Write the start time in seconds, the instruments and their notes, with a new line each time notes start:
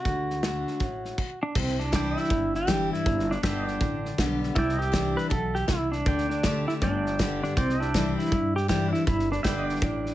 Already playing: pedal steel guitar F#4
0.05 upright bass D2, steel-string acoustic guitar D3, kick, snare
0.30 snare
0.43 steel-string acoustic guitar D3 A3 D4 F#4, snare, hi-hat pedal
0.67 snare
0.80 upright bass A1, steel-string acoustic guitar A2, kick, snare
1.05 snare
1.18 kick, crash
1.43 pedal steel guitar D4
1.55 upright bass C2, steel-string acoustic guitar C3, pedal steel guitar C4, kick, snare, crash
1.68 snare
1.79 pedal steel guitar D4, snare
1.92 steel-string acoustic guitar E3 G3 D4 E4, pedal steel guitar D5 G5, kick, snare, hi-hat pedal
2.17 pedal steel guitar E4 E5, snare
2.24 snare
2.30 upright bass G1, steel-string acoustic guitar G2, kick, snare
2.54 pedal steel guitar G4, snare
2.67 steel-string acoustic guitar E3 G3 D4 E4, kick, snare, hi-hat pedal
2.93 pedal steel guitar E4, snare
3.06 upright bass G1, steel-string acoustic guitar G2, kick, snare
3.19 snare
3.31 pedal steel guitar D4, snare
3.43 upright bass G1, steel-string acoustic guitar D3 G3 B3 G4, pedal steel guitar D4 E5 G5, kick, snare, hi-hat pedal
3.68 pedal steel guitar D5, snare
3.81 upright bass A1, steel-string acoustic guitar D3, kick, snare
4.05 snare
4.18 upright bass B1, steel-string acoustic guitar D3 G3 B3 G4, kick, snare, hi-hat pedal
4.43 snare
4.55 upright bass C2, steel-string acoustic guitar C3, pedal steel guitar E4 D5 G5, kick, snare
4.69 snare
4.79 pedal steel guitar G4, snare
4.83 pedal steel guitar E5
4.92 steel-string acoustic guitar E3 G3 D4 E4, kick, snare, hi-hat pedal
5.17 pedal steel guitar B4, snare
5.30 upright bass B1, steel-string acoustic guitar B2, pedal steel guitar A4, kick, snare
5.55 pedal steel guitar G4, snare
5.68 upright bass C2, steel-string acoustic guitar C3, pedal steel guitar E4, kick, snare, hi-hat pedal
5.92 pedal steel guitar D4, snare
6.05 upright bass D2, steel-string acoustic guitar D3, pedal steel guitar D5 G5, kick, snare
6.18 snare
6.29 pedal steel guitar D4, snare
6.43 steel-string acoustic guitar D3 A3 D4 G4, kick, snare, hi-hat pedal
6.68 pedal steel guitar E4, snare
6.81 upright bass G1, steel-string acoustic guitar G2, pedal steel guitar D4 D5 G5, kick, snare
7.06 snare
7.19 steel-string acoustic guitar D3 G3 B3 G4, kick, snare, hi-hat pedal
7.43 pedal steel guitar D4, snare
7.57 upright bass C2, steel-string acoustic guitar C3, pedal steel guitar C4 D5 G5, kick, snare
7.69 snare
7.80 pedal steel guitar D4 E5, upright piano E4 G4 C5 D5, snare
7.94 steel-string acoustic guitar E3 G3 D4 E4, upright piano E4 G4 C5 D5, kick, snare, hi-hat pedal
8.18 pedal steel guitar E4, snare
8.25 snare
8.32 steel-string acoustic guitar G2, upright bass G2, kick, snare
8.56 pedal steel guitar G4, snare
8.68 steel-string acoustic guitar E3 G3 D4 E4, upright piano E4 G4 C5 D5, pedal steel guitar G4, kick, snare, hi-hat pedal
8.88 pedal steel guitar D4
8.93 pedal steel guitar E4, snare
9.07 upright bass G1, steel-string acoustic guitar G2, pedal steel guitar E4, kick, snare
9.19 snare
9.31 upright piano D4 G4 B4 D5, pedal steel guitar D4, snare
9.43 upright bass G1, steel-string acoustic guitar D3 G3 B3 G4, pedal steel guitar D4 E5 G5, upright piano D4 G4 B4 E5, kick, snare, hi-hat pedal
9.68 pedal steel guitar D5, snare
9.75 snare
9.82 upright bass A1, steel-string acoustic guitar A2, kick, snare
10.06 snare